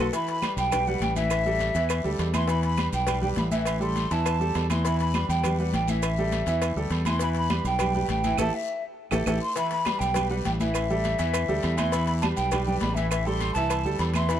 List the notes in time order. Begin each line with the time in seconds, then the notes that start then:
0.13 E3 E4 E5 B5, cowbell, low agogo, long guiro, maracas
0.28 B5, cowbell, high conga, maracas
0.42 G3 G4 B4, cowbell, high conga, low agogo, short guiro, claves, maracas
0.57 B1 G5, high conga, low agogo, short guiro, maracas
0.72 G3 G4 B4, cowbell, high conga, low conga, low agogo, long guiro, claves, maracas
0.87 G3 G4 B4 F#5, high conga, maracas
1.00 A1 G5, cowbell, high conga, low agogo, short guiro, maracas
1.16 E3 E4 E5, high conga, low agogo, short guiro, maracas
1.30 cowbell, low agogo, long guiro, claves, maracas
1.45 G3 G4 A4, high conga, maracas
1.60 cowbell, high conga, low agogo, short guiro, maracas
1.74 E2 E3 E4 E5, cowbell, short guiro, maracas
1.89 cowbell, high conga, low agogo, long guiro, claves, maracas
2.04 D2 G3 G4 A4, high conga, maracas
2.19 E2, cowbell, high conga, low timbale, low agogo, short guiro, maracas
2.34 E3 E4 E5 C6, cowbell, high conga, low agogo, short guiro, claves, maracas
2.48 E3 E4 E5 B5, cowbell, low agogo, long guiro, maracas
2.63 B5, cowbell, high conga, maracas
2.78 G3 G4 B4, cowbell, high conga, low agogo, short guiro, claves, maracas
2.93 B1 G5, high conga, low agogo, short guiro, maracas
3.07 G3 G4 B4, cowbell, high conga, low conga, low agogo, long guiro, claves, maracas
3.22 G3 G4 B4 G5, high conga, low conga, maracas
3.36 A1 B5, cowbell, high conga, low agogo, short guiro, maracas
3.51 E3 E4 E5, high conga, low agogo, short guiro, maracas
3.65 cowbell, low agogo, long guiro, claves, maracas
3.80 G3 G4 A4 C6, high conga, maracas
3.96 cowbell, high conga, low agogo, short guiro, maracas
4.11 E2 E3 E4 E5 A5, cowbell, short guiro, maracas
4.26 cowbell, high conga, low agogo, long guiro, claves, maracas
4.40 G3 G4 A4, high conga, maracas
4.55 E2, cowbell, high conga, low timbale, low agogo, short guiro, maracas
4.70 E3 E4 E5 C6, cowbell, high conga, low agogo, short guiro, claves, maracas
4.84 E3 E4 E5 B5, cowbell, high conga, low agogo, long guiro, maracas
5.00 B5, cowbell, high conga, maracas
5.14 G3 G4 B4, cowbell, high conga, low agogo, short guiro, claves, maracas
5.29 E2 G5, high conga, low agogo, short guiro, maracas
5.44 G3 G4 B4, cowbell, high conga, low conga, low agogo, long guiro, claves, maracas
5.58 G3 G4 B4 F#5, high conga, maracas
5.73 A1 G5, cowbell, high conga, low agogo, short guiro, maracas
5.88 E3 E4 E5, high conga, low agogo, short guiro, maracas
6.02 cowbell, low agogo, long guiro, claves, maracas
6.18 G3 G4 A4, high conga, maracas
6.32 cowbell, high conga, low agogo, short guiro, maracas
6.46 E2 E3 E4 E5, cowbell, short guiro, maracas
6.62 cowbell, high conga, low agogo, long guiro, claves, maracas
6.76 D2 G3 G4 A4, high conga, maracas
6.90 E2, cowbell, high conga, low agogo, short guiro, maracas
7.05 E3 E4 E5 C6, cowbell, high conga, low agogo, short guiro, claves, maracas
7.19 E3 E4 E5 B5, cowbell, low agogo, long guiro, maracas
7.35 B5, cowbell, high conga, maracas
7.50 G3 G4 B4, cowbell, high conga, low agogo, short guiro, claves, maracas
7.64 B1 G5, high conga, low agogo, short guiro, maracas
7.79 G3 G4 B4, cowbell, high conga, low conga, low agogo, long guiro, claves, maracas
7.94 G3 G4 B4, high conga, low conga, maracas
8.08 A1 G5, cowbell, high conga, low agogo, short guiro, maracas
8.24 E3 E4 E5, high conga, low agogo, short guiro, maracas
8.38 A1 E4 G4 A4 A5, cowbell, high conga, high timbale, long guiro, claves, maracas
8.54 E5
9.11 A1 E4 G4 A4, cowbell, high conga, high timbale, long guiro, claves, maracas
9.26 A1 E4 G4 A4, cowbell, high conga, high timbale, long guiro, claves, maracas
9.42 C6
9.56 E3 E4 E5 B5, cowbell, high conga, low agogo, long guiro, maracas
9.71 B5, cowbell, high conga, maracas
9.85 G3 G4 B4, cowbell, high conga, low agogo, short guiro, claves, maracas
9.99 B1 G5, high conga, low agogo, short guiro, maracas
10.14 G3 G4 B4, cowbell, high conga, low conga, low agogo, long guiro, claves, maracas
10.30 G3 G4 B4 F#5, high conga, maracas
10.45 A1 G5, cowbell, high conga, low agogo, short guiro, maracas
10.60 E3 E4 E5, high conga, low agogo, short guiro, maracas
10.74 cowbell, low agogo, long guiro, claves, maracas
10.90 G3 G4 A4, high conga, maracas
11.04 cowbell, high conga, low agogo, short guiro, maracas
11.19 E2 E3 E4 E5, cowbell, short guiro, maracas
11.34 cowbell, high conga, low agogo, long guiro, claves, maracas
11.49 D2 G3 G4 A4, high conga, maracas
11.63 E2, cowbell, high conga, low agogo, short guiro, maracas
11.77 E3 E4 E5 C6, cowbell, high conga, low agogo, short guiro, claves, maracas
11.92 E3 E4 E5 B5, cowbell, high conga, low agogo, long guiro, maracas
12.07 B5, cowbell, high conga, maracas
12.21 G3 G4 B4 A5, cowbell, high conga, low agogo, short guiro, claves, maracas
12.36 B1 G5, high conga, low agogo, short guiro, maracas
12.51 G3 G4 B4, cowbell, high conga, low conga, low agogo, long guiro, claves, maracas
12.65 G3 G4 B4 G5, high conga, low conga, maracas
12.80 A1 B5, cowbell, high conga, low timbale, low agogo, short guiro, maracas
12.94 E3 E4 E5, high conga, low agogo, short guiro, maracas
13.10 E5, cowbell, high conga, low agogo, long guiro, claves, maracas
13.26 G3 G4 A4 C6, high conga, maracas
13.40 cowbell, high conga, low agogo, short guiro, maracas
13.53 C2 E3 E4 E5 A5, cowbell, short guiro, maracas
13.70 cowbell, high conga, low agogo, long guiro, claves, maracas
13.85 D2 G3 G4 A4, high conga, maracas
13.98 E2 B5, cowbell, high conga, low agogo, short guiro, maracas
14.14 E3 E4 E5 C6, cowbell, high conga, low agogo, short guiro, claves, maracas
14.29 E3 E4 E5 B5, cowbell, low agogo, long guiro, maracas